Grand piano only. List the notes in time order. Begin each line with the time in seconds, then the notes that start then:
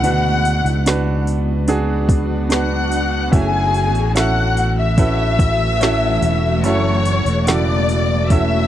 0.03 B2 D4 F#4 B4
0.86 D4 F#4 B4
1.68 D4 F#4 G#4
2.49 D4 F#4 B4
3.31 A3 C#4 E4 F#4 E5
4.15 C#4 E4 F#4 A4 E5
4.98 C#4 E4 F#4 A4 B4
5.81 C#4 E4 F#4 A4 E5
6.65 C#4 E4 F#4 A4 E5
7.47 C#3 E4 F#4 A4 F#5
8.31 C#4 E4 F#4 A4 E5